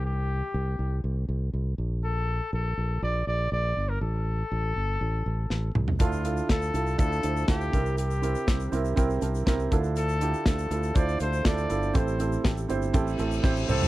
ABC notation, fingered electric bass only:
X:1
M:4/4
L:1/8
Q:1/4=121
K:Dm
V:1 name="Fingered electric bass" clef=bass
C,,2 C,, C,, C,, C,, C,, B,,,- | B,,,2 B,,, B,,, B,,, B,,, B,,, G,,, | A,,,2 A,,, G,,, A,,, A,,, A,,, C,, | D,,2 D,, C,, D,, D,, D,, C,,- |
C,,2 C,, C,, C,, C,, C,, D,,- | D,,2 D,, D,, D,, D,, D,, G,,, | A,,,2 A,,, G,,, A,,, A,,, A,,, C,, |]